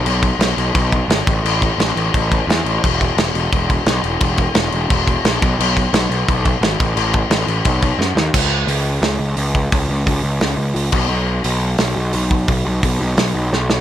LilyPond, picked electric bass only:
\new Staff \with { instrumentName = "Picked electric bass" } { \clef bass \time 4/4 \key e \major \tempo 4 = 174 b,,4 b,,8 b,,8 b,,4 gis,,8 a,,8 | a,,4 a,,8 a,,8 a,,4 e,8 a,,8 | e,,4 e,,8 e,,8 e,,4 b,,8 e,,8 | e,,4 e,,8 e,,8 e,,4 ais,,8 b,,8 |
b,,4 b,,8 b,,8 b,,4 gis,,8 a,,8 | a,,4 a,,8 a,,8 b,,4 fis,8 dis,8 | cis,4 cis,4 cis,8 cis,8 cis,4 | cis,8 cis,8 cis,8 cis,8 cis,8 cis,8 cis,8 b,,8 |
b,,4 b,,4 b,,8 b,,8 b,,4 | b,,8 b,,8 b,,8 b,,8 b,,8 b,,8 b,,4 | }